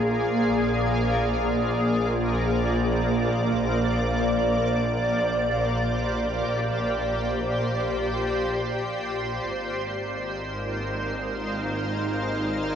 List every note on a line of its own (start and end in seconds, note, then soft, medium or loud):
0.00 9.41 A#1 medium
0.00 12.10 A#3 medium
0.00 12.31 F4 medium
0.00 5.00 G#4 medium
0.00 12.75 C5 medium
0.00 12.17 D5 medium
4.70 12.39 G4 medium
9.46 12.75 G#1 medium
9.46 12.75 G#3 medium
9.57 12.75 A#4 medium
9.68 12.75 D#4 medium
10.18 12.75 F5 medium